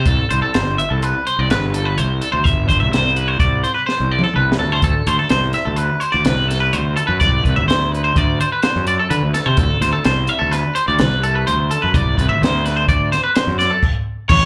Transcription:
0.06 C2 A4, kick, closed hi-hat
0.30 C2 C5, closed hi-hat
0.42 A4
0.54 G1 C5, snare, closed hi-hat
0.78 E5, closed hi-hat
0.90 C2 A4
1.02 B4, closed hi-hat
1.27 C5, closed hi-hat
1.39 C2 D5
1.50 G1 B4, snare, closed hi-hat
1.74 A4, closed hi-hat
1.85 B4
1.98 C2 C5, closed hi-hat
2.21 A4, closed hi-hat
2.32 D2 C5
2.44 G1 E5, kick, closed hi-hat
2.69 G1 C5, kick, closed hi-hat
2.80 C2 E5
2.92 C2 C5, snare, closed hi-hat
3.16 B4, closed hi-hat
3.28 C5
3.40 C2 D5, kick, closed hi-hat
3.64 C5, closed hi-hat
3.74 B4
3.86 C5, snare
4.00 C2
4.11 D5
4.19 mid tom
4.24 A4
4.34 C2 B4, mid tom
4.52 snare
4.59 D2 A4
4.72 C5
4.82 D2 A4, kick, closed hi-hat
5.07 D2 C5, closed hi-hat
5.19 A4
5.29 C2 C5, snare, closed hi-hat
5.53 E5, snare, closed hi-hat
5.65 D2 A4
5.76 B4, closed hi-hat
6.00 C5, closed hi-hat
6.12 D2 D5
6.24 C2 B4, snare, closed hi-hat
6.48 A4, snare, closed hi-hat
6.60 B4
6.73 D2 C5, closed hi-hat
6.96 A4, closed hi-hat
7.07 F#2 B4
7.20 C2 D5, kick, closed hi-hat
7.44 C2 B4, kick, closed hi-hat
7.56 D2 E5
7.68 D2 C5, snare, closed hi-hat
7.92 B4, closed hi-hat
8.04 C5
8.16 D2 D5, kick, closed hi-hat
8.41 C5, closed hi-hat
8.52 B4
8.62 C5, snare, closed hi-hat
8.76 F#2
8.87 D5, closed hi-hat
8.99 A4
9.10 D3 B4, closed hi-hat
9.23 D2
9.34 A4, snare, closed hi-hat
9.46 C3 C5
9.57 D2 A4, kick, closed hi-hat
9.81 D2 C5, snare, closed hi-hat
9.93 A4
10.04 C2 C5, snare, closed hi-hat
10.27 E5, closed hi-hat
10.39 D2 A4
10.51 B4, snare, closed hi-hat
10.75 C5, closed hi-hat
10.88 D2 D5
10.99 C2 B4, snare, closed hi-hat
11.23 A4, closed hi-hat
11.35 B4
11.47 D2 C5, closed hi-hat
11.71 A4, closed hi-hat
11.82 F#2 B4
11.94 C2 D5, kick, closed hi-hat
12.17 C2 B4, kick, closed hi-hat
12.29 D2 E5
12.42 D2 C5, snare, closed hi-hat
12.65 B4, snare, closed hi-hat
12.76 C5
12.88 D2 D5, kick, closed hi-hat
13.12 C5, snare, closed hi-hat
13.24 B4
13.36 C5, snare, closed hi-hat
13.47 F#2
13.59 D5, snare, closed hi-hat
13.70 A4
13.83 kick, crash
14.29 A1 C#5, kick, crash

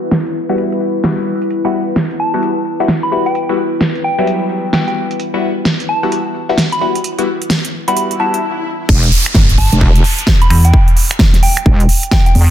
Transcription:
Already playing: E4 B4
0.11 snare, closed hi-hat
0.26 closed hi-hat
0.49 G3 B3 E4 F#4
0.58 closed hi-hat
0.72 closed hi-hat
1.04 G3 B3 E4 F#4, snare, closed hi-hat
1.19 closed hi-hat
1.42 closed hi-hat
1.50 closed hi-hat
1.65 G3 B3 E4 F#4
1.96 snare, closed hi-hat
2.11 closed hi-hat
2.20 A5
2.34 G3 B3 E4 F#4
2.43 closed hi-hat
2.80 G3 B3 E4 F#4
2.88 snare, closed hi-hat
3.03 B5, closed hi-hat
3.12 G3 B3 E4 F#4 B5
3.26 G5, closed hi-hat
3.35 closed hi-hat
3.49 G3 B3 E4 F#4
3.81 snare, closed hi-hat
3.95 closed hi-hat
4.04 G5
4.18 F#3 G3 B3 E4
4.27 closed hi-hat
4.73 G3 B3 E4 F#4 G5, snare, closed hi-hat
4.88 G5, closed hi-hat
5.11 closed hi-hat
5.20 closed hi-hat
5.34 G3 B3 E4 F#4
5.65 snare, closed hi-hat
5.80 closed hi-hat
5.89 A5
6.03 G3 B3 E4 F#4
6.12 closed hi-hat
6.49 G3 B3 E4 F#4
6.58 snare, closed hi-hat
6.72 B5, closed hi-hat
6.81 G3 B3 E4 F#4 B5
6.95 closed hi-hat
7.04 closed hi-hat
7.19 G3 B3 E4 F#4, closed hi-hat
7.42 closed hi-hat
7.50 snare, closed hi-hat
7.65 closed hi-hat
7.88 G3 B3 E4 F#4 B5, closed hi-hat
7.97 closed hi-hat, swell
8.11 closed hi-hat
8.20 G3 B3 E4 F#4 A5
8.34 closed hi-hat
8.89 E1, kick, crash, downlifter
9.03 closed hi-hat
9.12 open hi-hat
9.26 finger snap, closed hi-hat
9.34 G1, kick, snare
9.49 closed hi-hat
9.58 A5, kick, open hi-hat
9.72 E1, closed hi-hat
9.81 kick
9.95 closed hi-hat
10.04 open hi-hat
10.19 closed hi-hat
10.27 kick, snare
10.42 B5, closed hi-hat
10.50 E2 B5, finger snap, open hi-hat
10.65 G5, closed hi-hat
10.74 kick
10.88 closed hi-hat
10.97 open hi-hat
11.11 finger snap, closed hi-hat
11.19 kick, snare
11.33 snare, closed hi-hat
11.43 G5, open hi-hat
11.57 finger snap, closed hi-hat
11.66 E1, kick
11.80 closed hi-hat
11.89 open hi-hat
12.03 closed hi-hat
12.11 G5, kick, snare
12.26 G5, closed hi-hat
12.35 E2, open hi-hat

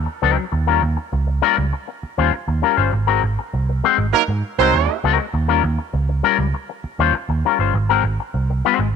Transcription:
0.06 muted clean electric guitar stroke
0.22 C#2 F#3 C4 D#4 A#4
0.37 muted clean electric guitar stroke
0.52 D#2, muted clean electric guitar stroke
0.67 G3 C#4 F4 A#4
0.82 D#2, muted clean electric guitar stroke
0.97 muted clean electric guitar stroke
1.12 C#2, muted clean electric guitar stroke
1.27 muted clean electric guitar stroke
1.42 G3 C#4 F4 A#4
1.57 C#2, muted clean electric guitar stroke
1.73 muted clean electric guitar stroke
1.88 muted clean electric guitar stroke
2.03 muted picked electric bass stroke
2.18 D#2 G3 C#4 F4 C5
2.33 muted picked electric bass stroke, muted clean electric guitar stroke
2.48 D#2, muted clean electric guitar stroke
2.62 G3 C#4 F4 A#4
2.77 G1 G3 C#4 F4 C5
2.93 G#1, muted clean electric guitar stroke
3.07 G#3 C4 F#4 A#4
3.23 G#1, muted clean electric guitar stroke
3.39 muted clean electric guitar stroke
3.53 C2, muted clean electric guitar stroke
3.69 muted clean electric guitar stroke
3.84 G#3 C4 F#4 C5
3.98 G#1, muted clean electric guitar stroke
4.13 F#3 A#3 D#4 A#4, muted picked electric bass stroke, muted clean electric guitar stroke
4.28 G#2, muted clean electric guitar stroke
4.58 C2 F#3 G#3 C4 D#4 F#4 A#4 C5
4.73 D#2, muted clean electric guitar stroke
4.89 muted clean electric guitar stroke
5.04 C#2 G#3 C4 F#4 A#4
5.19 muted clean electric guitar stroke
5.34 D#2, muted clean electric guitar stroke
5.48 G3 C#4 F4 A#4
5.63 D#2, muted clean electric guitar stroke
5.78 muted clean electric guitar stroke
5.93 C#2, muted clean electric guitar stroke
6.09 muted clean electric guitar stroke
6.23 G3 C#4 F4 A#4
6.39 C#2, muted clean electric guitar stroke
6.54 muted clean electric guitar stroke
6.69 muted clean electric guitar stroke
6.84 muted picked electric bass stroke
6.99 D#2 G3 C#4 F4 C5
7.14 muted picked electric bass stroke, muted clean electric guitar stroke
7.29 D#2, muted clean electric guitar stroke
7.45 G3 C#4 F4 A#4
7.59 G1 G3 C#4 F4 C5
7.74 G#1, muted clean electric guitar stroke
7.89 G#3 C4 F#4 A#4
8.04 G#1, muted clean electric guitar stroke
8.20 muted clean electric guitar stroke
8.34 C2, muted clean electric guitar stroke
8.50 muted clean electric guitar stroke
8.65 G#3 C4 F#4 C5
8.79 G#1, muted clean electric guitar stroke

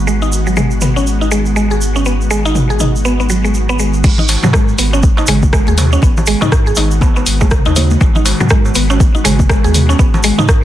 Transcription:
Already playing: G#1 D#3 G#3 B3 F#4
0.07 G#3, shaker
0.22 D#4, shaker
0.32 shaker
0.47 F#3, shaker
0.56 G#3, mid tom, shaker
0.71 shaker
0.81 B3, mid tom, shaker
0.96 C#4, shaker
1.07 shaker
1.21 D#4, shaker
1.31 G#3, shaker
1.46 shaker
1.56 G#3, shaker
1.71 G#4, shaker
1.81 shaker
1.96 C#4, shaker
2.05 B3, shaker
2.21 shaker
2.31 G#3, shaker
2.45 D#4, shaker
2.55 mid tom, shaker
2.70 G#4, shaker
2.80 D#4, mid tom, shaker
2.96 shaker
3.05 B3, shaker
3.20 B3, shaker
3.29 F#3, shaker
3.44 G#3, shaker
3.54 shaker
3.69 B3, shaker
3.79 G#3, shaker
3.93 shaker
4.04 G#1 D#3 G#3 B3 F#4, kick, crash, muted conga, low conga, shaker
4.18 D#4, low conga, shaker
4.28 open hi-hat, darbuka tek, shaker
4.43 G#2 F#3, mid tom, muted conga, darbuka ka, low conga, shaker
4.53 G#3, kick, cross-stick, darbuka tek, shaker
4.68 shaker
4.78 G#1 B3, open hi-hat, muted conga, shaker
4.93 C#4, darbuka tek, shaker
5.03 kick, high conga, shaker
5.17 D#4, muted conga, darbuka tek, shaker
5.27 G#1 G#3, open hi-hat, darbuka dum, shaker
5.42 kick, high conga, shaker
5.53 G#3, kick, cross-stick, darbuka tek, shaker
5.67 D#2 G#4, muted conga, high conga, shaker
5.78 open hi-hat, mid tom, darbuka tek, shaker
5.92 C#4, shaker
6.02 G#1 B3, kick, muted conga, shaker
6.17 darbuka tek, low conga, shaker
6.26 G#3, open hi-hat, shaker
6.41 G#2 D#4, mid tom, darbuka ka, muted conga, darbuka tek, low conga, shaker
6.52 kick, cross-stick, shaker
6.67 G#4, shaker
6.75 G#1 D#4, open hi-hat, muted conga, darbuka tek, shaker
6.91 shaker
7.01 B3, kick, high conga, darbuka tek, shaker
7.16 B3, darbuka ka, muted conga, shaker
7.26 G#1, open hi-hat, shaker
7.41 G#3, kick, darbuka tek, high conga, shaker
7.51 kick, cross-stick, mid tom, darbuka dum, shaker
7.65 D#2 D#4, muted conga, darbuka tek, shaker
7.76 D#4, open hi-hat, darbuka ka, high conga, darbuka dum, shaker
7.90 high conga, shaker
8.01 G#1 G#3, kick, muted conga, darbuka tek, low conga, shaker
8.15 D#4, low conga, shaker
8.25 open hi-hat, darbuka tek, shaker
8.40 G#2 F#3, mid tom, muted conga, darbuka ka, low conga, shaker
8.49 G#3, kick, cross-stick, shaker
8.65 darbuka tek, shaker
8.75 G#1 B3, open hi-hat, muted conga, shaker
8.90 C#4, darbuka tek, shaker
9.00 kick, high conga, shaker
9.15 D#4, muted conga, shaker
9.24 G#1 G#3, open hi-hat, darbuka tek, darbuka dum, shaker
9.39 kick, high conga, shaker
9.49 G#3, kick, cross-stick, darbuka tek, shaker
9.64 D#2 G#4, muted conga, high conga, shaker
9.74 open hi-hat, mid tom, shaker
9.89 C#4, darbuka tek, shaker
9.99 G#1 B3, kick, muted conga, shaker
10.14 darbuka tek, low conga, shaker
10.23 G#3, open hi-hat, shaker
10.38 G#2 D#4, mid tom, muted conga, darbuka ka, low conga, shaker
10.48 kick, cross-stick, darbuka tek, shaker

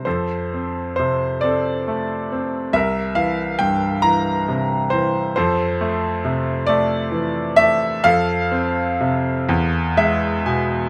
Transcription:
0.05 F2 A4 C5
0.54 C4
0.96 C3 C5
1.41 C4 A4 D5
1.88 A3
2.32 C4
2.73 C2 A#4 E5
3.15 E3 F5
3.59 G2 G5
4.02 E3 A#5
4.48 C3
4.90 E3 C5
5.36 F2 A4 C5
5.81 A3
6.25 C3
6.67 A3 D5
7.11 E3
7.56 A3 E5
8.04 F2 A4 F5
8.51 C4
9.01 C3
9.49 E2
9.97 G#3 E5
10.46 B2 G#5

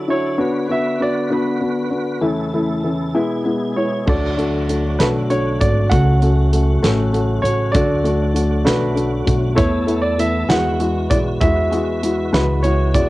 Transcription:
Already playing: D3 F#3 E4 A4
0.08 D4 E4 F#4 C#5
0.38 B3 D4 F#4 B4
0.69 B3 D4 F#4 E5
1.00 B3 D4 F#4 D5
1.30 B3 D4 F#4 B4
1.61 B3 D4 F#4
1.90 B3 D4 F#4
2.21 E2 C#3 E3 A3 C#4 E4 A4
2.53 E3 A3 C#4 E4
2.83 E3 A3 C#4 E4
3.14 B2 G#3 B3 E4 G#4
3.45 G#3 B3 E4
3.76 G#3 B3 E4 C#5
4.06 D2 D3 F#3 A3 D4 F#4 D5, kick, crash
4.37 A3 D4 F#4, closed hi-hat
4.69 A3 D4 F#4, closed hi-hat
4.99 B1 A3 D4 F#4 B4, snare, closed hi-hat
5.29 A3 D4 F#4 C#5, closed hi-hat
5.61 G#1 A3 D4 F#4 D5, kick, closed hi-hat
5.90 C#2 C#3 A3 C#4 F#4 F#5, kick, closed hi-hat
6.22 A3 C#4 F#4, closed hi-hat
6.53 A3 C#4 F#4, closed hi-hat
6.83 A1 A3 C#4 F#4, snare, closed hi-hat
7.13 A3 C#4 F#4, closed hi-hat
7.42 A1 A3 C#4 F#4 C#5, closed hi-hat
7.72 D2 D3 A3 D4 F#4 D5, kick, closed hi-hat
8.04 A3 D4 F#4, closed hi-hat
8.34 A3 D4 F#4, closed hi-hat
8.64 B1 A3 D4 F#4 B4, snare, closed hi-hat
8.95 A3 D4 F#4, closed hi-hat
9.26 B1 A3 D4 F#4, kick, closed hi-hat
9.55 E2 E3 A3 B3 E4 A4 C#5, kick, closed hi-hat
9.87 A3 B3 E4, closed hi-hat
10.02 D5
10.18 A3 B3 E4 E5, closed hi-hat
10.48 E2 G#3 E4 F#4 F#5, snare, closed hi-hat
10.80 G#3 E4 F#4, closed hi-hat
11.10 B1 G#3 E4 F#4 D5, kick, closed hi-hat
11.41 E2 G#3 E4 F#4 E5, kick, closed hi-hat
11.72 G#3 E4 F#4, closed hi-hat
12.03 G#3 E4 F#4, closed hi-hat
12.33 C#2 G#3 E4 F#4 B4, snare, closed hi-hat
12.63 G#3 E4 F#4 C#5, closed hi-hat
12.94 E1 G#3 E4 F#4 D5, kick, closed hi-hat

